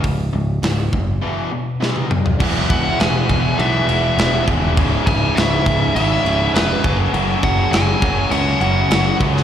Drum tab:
CC |----------------|x-x-x-x-x-x-x-x-|x-x-x-x-x-x-x-x-|x-x-x-x-x-x-x-x-|
HH |o---o-----------|----------------|----------------|----------------|
SD |----o-------o---|----o-------o---|----o-------o---|----o-------o--o|
T1 |-------------o--|----------------|----------------|----------------|
T2 |--------------o-|----------------|----------------|----------------|
FT |---------------o|----------------|----------------|----------------|
BD |o-----o---------|o-o---o-------o-|o-o---o-------o-|--o---o-------o-|